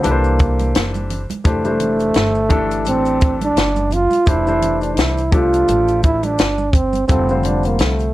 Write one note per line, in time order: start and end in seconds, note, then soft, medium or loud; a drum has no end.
0.02 0.71 C2 loud
0.02 1.18 E3 medium
0.02 1.06 A#3 medium
0.02 1.19 D4 medium
0.02 1.19 G4 medium
0.02 1.19 A4 medium
0.02 0.12 B4 medium
0.02 closed hi-hat medium
0.02 high conga medium
0.02 maracas medium
0.11 1.23 C5 medium
0.24 maracas soft
0.39 kick medium
0.39 closed hi-hat medium
0.39 maracas soft
0.59 closed hi-hat medium
0.59 high conga medium
0.59 maracas soft
0.75 1.27 F#1 medium
0.75 snare loud
0.75 closed hi-hat medium
0.75 maracas medium
0.94 closed hi-hat soft
0.94 high conga medium
0.94 maracas soft
1.10 closed hi-hat medium
1.10 low conga soft
1.10 maracas soft
1.30 muted upright bass stroke soft
1.30 closed hi-hat medium
1.30 high conga medium
1.30 maracas soft
1.44 2.12 F1 loud
1.44 1.61 E3 medium
1.44 1.61 A3 medium
1.44 1.62 D4 medium
1.44 1.62 G4 medium
1.44 1.62 C5 medium
1.44 kick loud
1.44 closed hi-hat medium
1.44 maracas medium
1.48 2.84 A3 medium
1.64 2.36 E3 medium
1.64 1.70 G3 medium
1.64 2.36 D4 medium
1.64 2.37 G4 medium
1.64 2.37 C5 medium
1.64 closed hi-hat soft
1.64 maracas soft
1.71 2.39 A3 medium
1.80 closed hi-hat medium
1.80 high conga soft
1.80 low conga medium
1.80 maracas soft
1.99 closed hi-hat soft
1.99 maracas soft
2.14 2.86 G1 medium
2.14 snare loud
2.14 closed hi-hat medium
2.14 maracas medium
2.35 maracas soft
2.49 3.65 E3 medium
2.49 3.65 A3 medium
2.49 3.66 D4 medium
2.49 3.66 G4 medium
2.49 3.66 A4 loud
2.49 kick medium
2.49 closed hi-hat medium
2.49 low conga medium
2.49 maracas soft
2.71 closed hi-hat medium
2.71 maracas soft
2.85 3.53 A1 medium
2.85 3.39 C4 medium
2.85 closed hi-hat medium
2.85 high conga soft
2.85 maracas medium
3.05 closed hi-hat soft
3.05 maracas soft
3.21 kick medium
3.21 closed hi-hat medium
3.21 maracas soft
3.41 3.95 D4 loud
3.41 closed hi-hat medium
3.41 high conga medium
3.41 maracas soft
3.56 4.09 F#1 medium
3.56 snare loud
3.56 closed hi-hat loud
3.56 maracas medium
3.76 closed hi-hat soft
3.76 high conga medium
3.76 maracas soft
3.91 4.30 F4 loud
3.91 closed hi-hat medium
3.91 low conga medium
3.91 maracas soft
4.11 muted upright bass stroke soft
4.11 closed hi-hat medium
4.11 high conga medium
4.11 maracas soft
4.26 4.94 F1 loud
4.26 4.43 E3 medium
4.26 4.43 A3 medium
4.26 4.44 D4 medium
4.26 4.85 E4 loud
4.26 4.44 G4 medium
4.26 4.44 C5 medium
4.26 kick loud
4.26 closed hi-hat medium
4.26 maracas medium
4.46 5.18 E3 medium
4.46 5.18 A3 medium
4.46 5.19 D4 medium
4.46 5.19 G4 medium
4.46 5.19 C5 medium
4.46 maracas soft
4.62 closed hi-hat medium
4.62 high conga soft
4.62 low conga medium
4.62 maracas soft
4.81 4.95 D4 medium
4.81 closed hi-hat soft
4.81 maracas soft
4.93 5.00 D#4 medium
4.93 closed hi-hat medium
4.98 5.65 C2 medium
4.98 5.33 E4 medium
4.98 snare medium
4.98 maracas medium
5.17 closed hi-hat soft
5.17 maracas soft
5.32 6.48 F3 medium
5.32 6.48 A3 medium
5.32 6.48 D4 medium
5.32 6.00 F4 medium
5.32 6.49 G4 medium
5.32 6.49 A4 medium
5.32 kick medium
5.32 closed hi-hat medium
5.32 low conga medium
5.32 maracas soft
5.53 closed hi-hat soft
5.53 maracas soft
5.68 6.36 A1 medium
5.68 closed hi-hat medium
5.68 high conga medium
5.68 maracas medium
5.88 closed hi-hat soft
5.88 maracas soft
6.03 6.26 E4 medium
6.03 kick medium
6.03 closed hi-hat medium
6.03 maracas soft
6.23 6.76 D4 medium
6.23 closed hi-hat soft
6.23 high conga medium
6.23 maracas soft
6.38 7.06 G1 medium
6.38 snare loud
6.38 closed hi-hat loud
6.38 maracas medium
6.58 high conga medium
6.58 maracas soft
6.73 7.07 C4 medium
6.73 kick medium
6.73 closed hi-hat medium
6.73 low conga soft
6.73 maracas soft
6.93 closed hi-hat medium
6.93 high conga medium
6.93 maracas soft
7.08 7.77 F1 medium
7.08 7.26 D3 medium
7.08 7.26 G3 medium
7.08 7.47 C4 medium
7.08 7.26 C4 medium
7.08 7.26 F4 medium
7.08 7.27 A4 medium
7.08 kick loud
7.08 closed hi-hat medium
7.08 maracas medium
7.29 8.01 D3 medium
7.29 8.01 G3 medium
7.29 8.01 C4 medium
7.29 8.02 F4 medium
7.29 8.02 C5 medium
7.29 maracas soft
7.43 7.67 D4 medium
7.43 closed hi-hat medium
7.43 high conga soft
7.43 low conga medium
7.43 maracas soft
7.63 7.82 A#3 medium
7.63 closed hi-hat soft
7.63 maracas soft
7.79 8.14 C2 medium
7.79 8.14 A3 medium
7.79 snare medium
7.79 closed hi-hat medium
7.79 maracas medium
7.99 closed hi-hat soft
7.99 maracas soft